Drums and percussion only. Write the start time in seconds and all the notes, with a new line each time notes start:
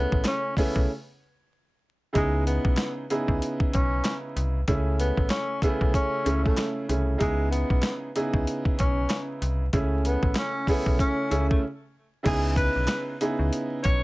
0.12 kick
0.24 snare, clap, closed hi-hat
0.57 kick, snare, open hi-hat
0.76 kick
2.15 kick, closed hi-hat
2.47 closed hi-hat
2.65 kick
2.77 snare, clap, closed hi-hat
3.10 closed hi-hat
3.28 kick
3.42 closed hi-hat
3.60 kick
3.73 kick, closed hi-hat
4.04 snare, clap, closed hi-hat
4.37 closed hi-hat
4.68 kick, closed hi-hat
5.00 closed hi-hat
5.17 kick
5.30 snare, clap, closed hi-hat
5.62 kick, closed hi-hat
5.81 kick
5.94 kick, closed hi-hat
6.26 closed hi-hat
6.46 kick
6.57 snare, clap, closed hi-hat
6.89 closed hi-hat
7.21 kick, closed hi-hat
7.52 closed hi-hat
7.70 kick
7.82 snare, clap, closed hi-hat
8.16 closed hi-hat
8.34 kick
8.47 closed hi-hat
8.65 kick
8.79 kick, closed hi-hat
9.10 snare, clap, closed hi-hat
9.42 closed hi-hat
9.73 kick, closed hi-hat
10.05 closed hi-hat
10.23 kick
10.35 snare, clap, closed hi-hat
10.67 kick, snare, open hi-hat
10.86 kick
10.99 kick, closed hi-hat
11.31 closed hi-hat
11.51 kick
12.26 kick, closed hi-hat, crash
12.56 kick, closed hi-hat
12.88 snare, clap, closed hi-hat
13.21 closed hi-hat
13.53 closed hi-hat
13.84 kick, closed hi-hat